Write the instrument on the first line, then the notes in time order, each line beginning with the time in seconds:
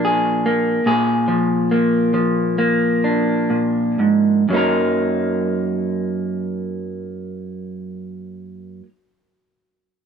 clean electric guitar
Already playing: A#2 F3 A#3 D4
0.05 G#4
0.46 A#3
0.86 A#2 G#4
1.28 F3
1.71 A#3
2.14 F3
2.58 A#3
3.04 D4
3.50 A#2
3.99 G#2
4.49 F#2 F#3
4.53 A#3 D#4 A#4